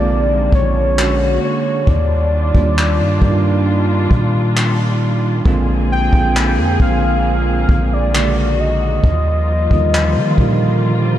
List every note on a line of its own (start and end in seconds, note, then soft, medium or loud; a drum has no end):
0.00 0.49 A#1 loud
0.00 0.95 C3 medium
0.00 0.97 D3 loud
0.00 0.98 G#3 loud
0.00 1.83 G#3 medium
0.00 0.99 A#3 loud
0.00 1.83 A#3 medium
0.00 1.00 C4 medium
0.00 0.94 D4 medium
0.00 1.00 D4 medium
0.00 1.00 D#4 medium
0.00 1.00 F4 loud
0.00 0.54 D5 loud
0.52 1.39 A#1 medium
0.52 1.39 C#5 loud
0.52 kick medium
0.97 1.69 D3 medium
0.97 1.86 D3 medium
0.97 1.69 G#3 medium
0.97 1.70 A#3 medium
0.97 1.70 C#4 medium
0.97 1.86 F#4 medium
0.97 1.70 F#4 medium
0.97 clap loud
1.44 1.90 C#5 medium
1.87 2.52 D#2 loud
1.87 5.42 D#3 medium
1.87 5.42 G3 medium
1.87 5.42 D4 medium
1.87 5.42 F4 medium
1.87 4.57 D5 medium
1.87 kick loud
2.54 3.01 D#2 loud
2.54 2.95 D#3 medium
2.54 2.95 G3 medium
2.54 2.96 A#3 medium
2.54 2.96 D4 medium
2.54 2.96 F4 medium
2.54 kick medium
2.78 clap loud
2.99 3.21 G2 loud
3.21 4.08 G2 loud
3.21 4.30 D#3 medium
3.21 4.30 G3 medium
3.21 4.31 A#3 medium
3.21 4.31 D4 medium
3.21 3.29 D#4 medium
3.21 kick medium
3.30 4.35 F4 medium
4.11 5.41 A#2 medium
4.11 kick medium
4.57 clap medium
5.45 6.10 A#1 loud
5.45 9.00 A#2 medium
5.45 5.86 D3 loud
5.45 5.86 G#3 loud
5.45 9.00 A#3 medium
5.45 5.87 A#3 medium
5.45 8.11 C4 medium
5.45 5.87 C4 loud
5.45 5.87 F4 loud
5.45 8.12 G#4 medium
5.45 kick loud
5.92 6.77 G5 loud
6.12 6.59 A#1 loud
6.12 6.53 D3 medium
6.12 6.53 G#3 medium
6.12 6.54 A#3 medium
6.12 6.54 C4 medium
6.12 6.54 F4 medium
6.12 kick medium
6.37 clap loud
6.58 6.79 F2 loud
6.79 7.66 A#1 loud
6.79 7.88 D3 medium
6.79 7.88 G#3 medium
6.79 7.89 A#3 medium
6.79 7.89 C4 medium
6.79 7.89 F4 medium
6.79 7.95 F5 loud
6.79 kick medium
7.69 8.99 A#1 loud
7.69 kick medium
7.93 8.62 D5 medium
8.14 8.86 C#3 medium
8.14 8.85 D3 medium
8.14 9.03 G#3 medium
8.14 8.86 G#3 medium
8.14 8.86 A#3 medium
8.14 9.03 F#4 medium
8.14 8.87 F#4 medium
8.14 clap loud
8.60 11.19 D#5 medium
9.04 9.68 D#2 loud
9.04 11.19 F3 medium
9.04 11.19 G3 medium
9.04 11.19 A#3 medium
9.04 11.19 F4 medium
9.04 kick loud
9.70 10.17 D#2 loud
9.70 10.12 D3 medium
9.70 10.11 D#3 medium
9.70 10.12 G3 medium
9.70 10.12 A#3 medium
9.70 10.12 F4 medium
9.70 kick medium
9.95 clap loud
10.16 10.37 D#3 medium
10.37 11.19 A#2 medium
10.37 11.19 D3 medium
10.37 11.19 D#3 medium
10.37 11.19 G3 medium
10.37 11.19 A#3 medium
10.37 11.19 F4 medium
10.37 kick medium